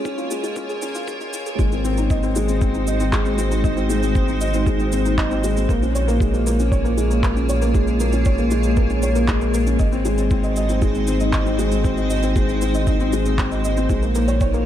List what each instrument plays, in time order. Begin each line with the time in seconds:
Already playing: felt piano G#3 C#4 F4 G#4, ambient pad A#3 F4 A#4 C#5
0.05 felt piano C#4, kick, shaker
0.18 felt piano F4, shaker
0.30 felt piano G#3, shaker
0.43 felt piano G#3, shaker
0.56 felt piano C#4, kick, shaker
0.69 felt piano G#4, shaker
0.82 felt piano C#4, shaker
0.95 felt piano F4, shaker
1.08 felt piano G#3, kick, shaker
1.21 felt piano G#3, shaker
1.33 felt piano C#4, shaker
1.46 felt piano G#4, shaker
1.59 sub bass G#1, felt piano G#3, ambient pad G#3 D#4 F#4 C5, kick, shaker
1.72 felt piano C4, shaker
1.84 felt piano C4, shaker
1.97 felt piano D#4, shaker
2.10 felt piano D#5, kick, shaker
2.23 felt piano C4, shaker
2.36 felt piano G#3, shaker
2.49 felt piano C4, shaker
2.61 felt piano C4, kick, shaker
2.74 felt piano D#4, shaker
2.87 felt piano D#5, shaker
3.00 felt piano C4, shaker
3.13 felt piano G#3, kick, clap, shaker
3.26 felt piano C4, shaker
3.38 felt piano C4, shaker
3.51 felt piano D#4, shaker
3.64 felt piano D#5, kick, shaker
3.76 felt piano C4, shaker
3.89 felt piano G#3, shaker
4.02 felt piano C4, shaker
4.15 felt piano C4, kick, shaker
4.28 felt piano D#4, shaker
4.41 felt piano D#5, shaker
4.54 felt piano C4, shaker
4.66 felt piano G#3, kick, shaker
4.80 felt piano C4, shaker
4.92 felt piano C4, shaker
5.05 felt piano D#4, shaker
5.18 felt piano D#5, kick, clap, shaker
5.31 felt piano C4, shaker
5.44 felt piano G#3, shaker
5.57 felt piano C4, shaker
5.69 sub bass A#1, ambient pad A#3 F4 G#4 C#5, felt piano A#3, kick, shaker
5.82 felt piano C#4, shaker
5.95 felt piano C#5, shaker
6.08 felt piano A#3, shaker
6.20 felt piano G#3, kick, shaker
6.34 felt piano A#3, shaker
6.47 felt piano A#3, shaker
6.59 felt piano C#4, shaker
6.72 felt piano C#5, kick, shaker
6.84 felt piano A#3, shaker
6.97 felt piano G#3, shaker
7.10 felt piano A#3, shaker
7.23 felt piano A#3, kick, clap, shaker
7.36 felt piano C#4, shaker
7.49 felt piano C#5, shaker
7.62 felt piano A#3, shaker
7.75 felt piano G#3, kick, shaker
7.87 felt piano A#3, shaker
8.00 felt piano A#3, shaker
8.13 felt piano C#4, shaker
8.25 felt piano C#5, kick, shaker
8.38 felt piano A#3, shaker
8.51 felt piano G#3, shaker
8.63 felt piano A#3, shaker
8.77 felt piano A#3, kick, shaker
8.90 felt piano C#4, shaker
9.03 felt piano C#5, shaker
9.15 felt piano A#3, shaker
9.28 felt piano G#3, kick, clap, shaker
9.41 felt piano A#3, shaker
9.54 felt piano A#3, shaker
9.67 felt piano C#4, shaker
9.79 sub bass G#1, ambient pad G#3 D#4 F#4 C5, felt piano D#5, kick, shaker
9.92 felt piano C4, shaker
10.05 felt piano G#3, shaker
10.18 felt piano C4, shaker
10.31 felt piano C4, kick, shaker
10.44 felt piano D#5, shaker
10.56 felt piano D#5, shaker
10.69 felt piano C4, shaker
10.82 felt piano G#3, kick, shaker
10.95 felt piano C4, shaker
11.07 felt piano C4, shaker
11.20 felt piano D#5, shaker
11.33 felt piano D#5, kick, clap, shaker
11.46 felt piano C4, shaker
11.59 felt piano G#3, shaker
11.72 felt piano C4, shaker
11.84 felt piano C4, kick, shaker
11.97 felt piano D#5, shaker
12.10 felt piano D#5, shaker
12.23 felt piano C4, shaker
12.36 felt piano G#3, kick, shaker
12.49 felt piano C4, shaker
12.62 felt piano C4, shaker
12.75 felt piano D#5, shaker
12.87 felt piano D#5, kick, shaker
13.00 felt piano C4, shaker
13.13 felt piano G#3, shaker
13.26 felt piano C4, shaker
13.38 felt piano C4, kick, clap, shaker
13.52 felt piano D#5, shaker
13.65 felt piano D#5, shaker
13.77 felt piano C4, shaker
13.89 sub bass A#1, felt piano G#3, ambient pad A#3 F4 G#4 C#5, kick, shaker
14.02 felt piano A#3, shaker
14.15 felt piano A#3, shaker
14.28 felt piano C#5, shaker
14.41 felt piano C#5, kick, shaker
14.54 felt piano A#3, shaker